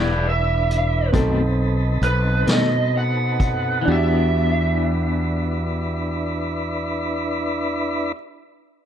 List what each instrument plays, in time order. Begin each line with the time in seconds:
Already playing: fretless electric bass E1, clean electric guitar E3 B3 D4 G4, upright piano D4 A4 F#5, tonewheel organ D4 E4 B4, lead electric guitar B4 D5
0.29 lead electric guitar E5
0.71 closed hi-hat
1.12 fretless electric bass B1, clean electric guitar B2 D#3 A3 C4, upright piano C4 D#4 A4, tonewheel organ C4 D#4 A4 B4, kick, closed hi-hat
2.02 fretless electric bass B1, lead electric guitar B4, closed hi-hat
2.46 fretless electric bass B2, clean electric guitar B2 D#3 A3 C4, snare, closed hi-hat
2.50 lead electric guitar D#5
2.97 lead electric guitar F#5
3.40 kick, closed hi-hat
3.82 clean electric guitar E3, upright piano D4
3.88 fretless electric bass E2, clean electric guitar B3, tonewheel organ D4 E4 B4, upright piano F#4 G4, lead electric guitar E5
3.94 clean electric guitar D4